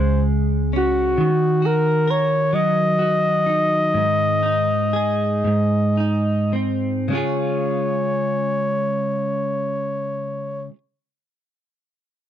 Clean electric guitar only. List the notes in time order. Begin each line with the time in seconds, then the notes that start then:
Already playing: C#3 G#3 C#4 F4 G#4
0.73 C#4
1.18 D#3
1.62 F#4
2.08 A#4
2.53 F#3
2.99 F#4
3.46 D#4
3.94 G#2
4.43 D#4
4.93 G#4
5.44 G#2
5.97 D#4
6.53 C4
7.08 C#3 G#3 C#4
7.13 F4 G#4